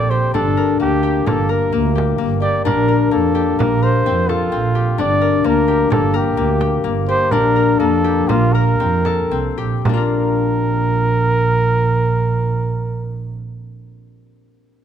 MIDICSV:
0, 0, Header, 1, 5, 480
1, 0, Start_track
1, 0, Key_signature, -2, "major"
1, 0, Tempo, 464396
1, 357, Time_signature, 5, 2, 24, 8
1, 7076, Tempo, 482315
1, 8516, Tempo, 519031
1, 9956, Tempo, 543478
1, 14370, End_track
2, 0, Start_track
2, 0, Title_t, "Flugelhorn"
2, 0, Program_c, 0, 56
2, 0, Note_on_c, 0, 74, 84
2, 103, Note_on_c, 0, 72, 75
2, 118, Note_off_c, 0, 74, 0
2, 342, Note_off_c, 0, 72, 0
2, 348, Note_on_c, 0, 69, 79
2, 799, Note_off_c, 0, 69, 0
2, 835, Note_on_c, 0, 67, 74
2, 1321, Note_on_c, 0, 69, 74
2, 1336, Note_off_c, 0, 67, 0
2, 1558, Note_on_c, 0, 70, 64
2, 1574, Note_off_c, 0, 69, 0
2, 2039, Note_off_c, 0, 70, 0
2, 2501, Note_on_c, 0, 74, 80
2, 2733, Note_off_c, 0, 74, 0
2, 2741, Note_on_c, 0, 70, 87
2, 3225, Note_on_c, 0, 69, 78
2, 3240, Note_off_c, 0, 70, 0
2, 3711, Note_on_c, 0, 70, 80
2, 3727, Note_off_c, 0, 69, 0
2, 3956, Note_on_c, 0, 72, 87
2, 3971, Note_off_c, 0, 70, 0
2, 4438, Note_on_c, 0, 65, 75
2, 4453, Note_off_c, 0, 72, 0
2, 5156, Note_off_c, 0, 65, 0
2, 5172, Note_on_c, 0, 74, 86
2, 5641, Note_on_c, 0, 70, 80
2, 5657, Note_off_c, 0, 74, 0
2, 6111, Note_off_c, 0, 70, 0
2, 6117, Note_on_c, 0, 69, 79
2, 6371, Note_on_c, 0, 67, 68
2, 6386, Note_off_c, 0, 69, 0
2, 7084, Note_off_c, 0, 67, 0
2, 7305, Note_on_c, 0, 72, 86
2, 7541, Note_on_c, 0, 70, 91
2, 7556, Note_off_c, 0, 72, 0
2, 8013, Note_on_c, 0, 69, 80
2, 8028, Note_off_c, 0, 70, 0
2, 8505, Note_on_c, 0, 65, 77
2, 8520, Note_off_c, 0, 69, 0
2, 8739, Note_on_c, 0, 70, 73
2, 8753, Note_off_c, 0, 65, 0
2, 9701, Note_off_c, 0, 70, 0
2, 9952, Note_on_c, 0, 70, 82
2, 13025, Note_off_c, 0, 70, 0
2, 14370, End_track
3, 0, Start_track
3, 0, Title_t, "Harp"
3, 0, Program_c, 1, 46
3, 0, Note_on_c, 1, 60, 60
3, 0, Note_on_c, 1, 62, 71
3, 0, Note_on_c, 1, 67, 70
3, 0, Note_on_c, 1, 69, 63
3, 105, Note_off_c, 1, 67, 0
3, 109, Note_on_c, 1, 67, 62
3, 347, Note_off_c, 1, 62, 0
3, 351, Note_on_c, 1, 62, 73
3, 590, Note_on_c, 1, 70, 64
3, 652, Note_off_c, 1, 69, 0
3, 823, Note_on_c, 1, 58, 59
3, 1060, Note_off_c, 1, 67, 0
3, 1064, Note_on_c, 1, 67, 65
3, 1302, Note_off_c, 1, 58, 0
3, 1306, Note_on_c, 1, 58, 62
3, 1536, Note_off_c, 1, 70, 0
3, 1540, Note_on_c, 1, 70, 63
3, 1779, Note_off_c, 1, 58, 0
3, 1783, Note_on_c, 1, 58, 70
3, 2014, Note_off_c, 1, 67, 0
3, 2019, Note_on_c, 1, 67, 57
3, 2251, Note_off_c, 1, 58, 0
3, 2255, Note_on_c, 1, 58, 65
3, 2493, Note_off_c, 1, 67, 0
3, 2497, Note_on_c, 1, 67, 56
3, 2735, Note_off_c, 1, 62, 0
3, 2740, Note_on_c, 1, 62, 80
3, 2968, Note_off_c, 1, 60, 0
3, 2974, Note_off_c, 1, 70, 0
3, 2979, Note_on_c, 1, 70, 61
3, 3213, Note_off_c, 1, 58, 0
3, 3217, Note_on_c, 1, 58, 63
3, 3456, Note_off_c, 1, 67, 0
3, 3460, Note_on_c, 1, 67, 61
3, 3704, Note_off_c, 1, 58, 0
3, 3708, Note_on_c, 1, 58, 72
3, 3949, Note_off_c, 1, 70, 0
3, 3953, Note_on_c, 1, 70, 63
3, 4196, Note_on_c, 1, 60, 77
3, 4433, Note_on_c, 1, 69, 59
3, 4495, Note_off_c, 1, 58, 0
3, 4495, Note_off_c, 1, 70, 0
3, 4666, Note_off_c, 1, 60, 0
3, 4671, Note_on_c, 1, 60, 72
3, 4906, Note_off_c, 1, 67, 0
3, 4910, Note_on_c, 1, 67, 57
3, 5146, Note_off_c, 1, 62, 0
3, 5150, Note_on_c, 1, 62, 81
3, 5389, Note_on_c, 1, 70, 63
3, 5451, Note_off_c, 1, 69, 0
3, 5626, Note_on_c, 1, 58, 74
3, 5864, Note_off_c, 1, 67, 0
3, 5868, Note_on_c, 1, 67, 65
3, 6097, Note_off_c, 1, 58, 0
3, 6101, Note_on_c, 1, 58, 63
3, 6339, Note_off_c, 1, 70, 0
3, 6343, Note_on_c, 1, 70, 69
3, 6582, Note_off_c, 1, 58, 0
3, 6586, Note_on_c, 1, 58, 71
3, 6822, Note_off_c, 1, 67, 0
3, 6826, Note_on_c, 1, 67, 60
3, 7064, Note_off_c, 1, 58, 0
3, 7068, Note_on_c, 1, 58, 72
3, 7310, Note_off_c, 1, 67, 0
3, 7314, Note_on_c, 1, 67, 61
3, 7544, Note_off_c, 1, 62, 0
3, 7548, Note_on_c, 1, 62, 77
3, 7746, Note_off_c, 1, 60, 0
3, 7782, Note_off_c, 1, 70, 0
3, 7786, Note_on_c, 1, 70, 59
3, 8018, Note_off_c, 1, 58, 0
3, 8022, Note_on_c, 1, 58, 66
3, 8263, Note_off_c, 1, 67, 0
3, 8267, Note_on_c, 1, 67, 60
3, 8508, Note_off_c, 1, 58, 0
3, 8512, Note_on_c, 1, 58, 74
3, 8747, Note_off_c, 1, 70, 0
3, 8750, Note_on_c, 1, 70, 63
3, 8985, Note_on_c, 1, 60, 67
3, 9223, Note_on_c, 1, 69, 63
3, 9278, Note_off_c, 1, 58, 0
3, 9278, Note_off_c, 1, 70, 0
3, 9457, Note_off_c, 1, 60, 0
3, 9460, Note_on_c, 1, 60, 68
3, 9699, Note_off_c, 1, 67, 0
3, 9702, Note_on_c, 1, 67, 59
3, 9961, Note_on_c, 1, 58, 55
3, 9989, Note_off_c, 1, 62, 0
3, 9993, Note_on_c, 1, 62, 57
3, 10014, Note_off_c, 1, 69, 0
3, 10031, Note_on_c, 1, 65, 58
3, 10064, Note_on_c, 1, 70, 53
3, 11793, Note_off_c, 1, 67, 0
3, 12132, Note_off_c, 1, 60, 0
3, 13648, Note_off_c, 1, 58, 0
3, 13664, Note_off_c, 1, 62, 0
3, 13683, Note_off_c, 1, 65, 0
3, 13699, Note_off_c, 1, 70, 0
3, 14370, End_track
4, 0, Start_track
4, 0, Title_t, "Double bass"
4, 0, Program_c, 2, 43
4, 0, Note_on_c, 2, 34, 78
4, 261, Note_off_c, 2, 34, 0
4, 350, Note_on_c, 2, 31, 81
4, 738, Note_off_c, 2, 31, 0
4, 833, Note_on_c, 2, 38, 63
4, 1220, Note_off_c, 2, 38, 0
4, 1316, Note_on_c, 2, 31, 82
4, 1702, Note_off_c, 2, 31, 0
4, 1802, Note_on_c, 2, 38, 80
4, 2186, Note_off_c, 2, 38, 0
4, 2285, Note_on_c, 2, 31, 84
4, 2668, Note_off_c, 2, 31, 0
4, 2760, Note_on_c, 2, 34, 79
4, 3144, Note_off_c, 2, 34, 0
4, 3234, Note_on_c, 2, 41, 72
4, 3620, Note_off_c, 2, 41, 0
4, 3722, Note_on_c, 2, 34, 87
4, 4104, Note_off_c, 2, 34, 0
4, 4211, Note_on_c, 2, 41, 72
4, 4589, Note_off_c, 2, 41, 0
4, 4683, Note_on_c, 2, 34, 81
4, 5064, Note_off_c, 2, 34, 0
4, 5164, Note_on_c, 2, 31, 85
4, 5544, Note_off_c, 2, 31, 0
4, 5641, Note_on_c, 2, 38, 75
4, 6021, Note_off_c, 2, 38, 0
4, 6121, Note_on_c, 2, 31, 84
4, 6501, Note_off_c, 2, 31, 0
4, 6584, Note_on_c, 2, 38, 76
4, 6974, Note_off_c, 2, 38, 0
4, 7073, Note_on_c, 2, 31, 74
4, 7451, Note_off_c, 2, 31, 0
4, 7542, Note_on_c, 2, 34, 74
4, 7928, Note_off_c, 2, 34, 0
4, 8021, Note_on_c, 2, 41, 71
4, 8415, Note_off_c, 2, 41, 0
4, 8515, Note_on_c, 2, 34, 91
4, 8888, Note_off_c, 2, 34, 0
4, 8982, Note_on_c, 2, 41, 76
4, 9365, Note_off_c, 2, 41, 0
4, 9461, Note_on_c, 2, 36, 65
4, 9681, Note_off_c, 2, 36, 0
4, 9704, Note_on_c, 2, 34, 71
4, 9929, Note_off_c, 2, 34, 0
4, 9960, Note_on_c, 2, 34, 77
4, 13029, Note_off_c, 2, 34, 0
4, 14370, End_track
5, 0, Start_track
5, 0, Title_t, "Frame drum"
5, 359, Note_on_c, 9, 64, 50
5, 463, Note_off_c, 9, 64, 0
5, 1316, Note_on_c, 9, 64, 56
5, 1419, Note_off_c, 9, 64, 0
5, 1800, Note_on_c, 9, 64, 18
5, 1903, Note_off_c, 9, 64, 0
5, 2049, Note_on_c, 9, 64, 49
5, 2152, Note_off_c, 9, 64, 0
5, 2283, Note_on_c, 9, 64, 18
5, 2386, Note_off_c, 9, 64, 0
5, 2524, Note_on_c, 9, 64, 19
5, 2628, Note_off_c, 9, 64, 0
5, 2758, Note_on_c, 9, 64, 49
5, 2861, Note_off_c, 9, 64, 0
5, 3723, Note_on_c, 9, 64, 57
5, 3826, Note_off_c, 9, 64, 0
5, 4204, Note_on_c, 9, 64, 18
5, 4308, Note_off_c, 9, 64, 0
5, 4440, Note_on_c, 9, 64, 46
5, 4543, Note_off_c, 9, 64, 0
5, 4690, Note_on_c, 9, 64, 17
5, 4794, Note_off_c, 9, 64, 0
5, 4920, Note_on_c, 9, 64, 20
5, 5023, Note_off_c, 9, 64, 0
5, 5161, Note_on_c, 9, 64, 45
5, 5264, Note_off_c, 9, 64, 0
5, 6117, Note_on_c, 9, 64, 62
5, 6220, Note_off_c, 9, 64, 0
5, 6593, Note_on_c, 9, 64, 16
5, 6697, Note_off_c, 9, 64, 0
5, 6832, Note_on_c, 9, 64, 46
5, 6936, Note_off_c, 9, 64, 0
5, 7075, Note_on_c, 9, 64, 18
5, 7175, Note_off_c, 9, 64, 0
5, 7314, Note_on_c, 9, 64, 17
5, 7413, Note_off_c, 9, 64, 0
5, 7542, Note_on_c, 9, 64, 52
5, 7642, Note_off_c, 9, 64, 0
5, 8271, Note_on_c, 9, 64, 20
5, 8371, Note_off_c, 9, 64, 0
5, 8518, Note_on_c, 9, 64, 55
5, 8610, Note_off_c, 9, 64, 0
5, 9217, Note_on_c, 9, 64, 45
5, 9309, Note_off_c, 9, 64, 0
5, 9458, Note_on_c, 9, 64, 18
5, 9550, Note_off_c, 9, 64, 0
5, 9958, Note_on_c, 9, 64, 64
5, 10047, Note_off_c, 9, 64, 0
5, 14370, End_track
0, 0, End_of_file